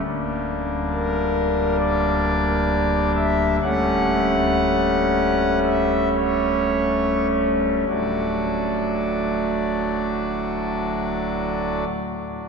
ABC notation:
X:1
M:4/4
L:1/8
Q:1/4=57
K:D
V:1 name="Pipe organ"
z2 _B2 d3 e | f4 e c2 z | [D,,A,,F,A,DFd]8 |]
V:2 name="Pipe organ" clef=bass
[D,,,D,,G,_B,D]8 | [D,,,D,,G,A,C]8 | D,,,8 |]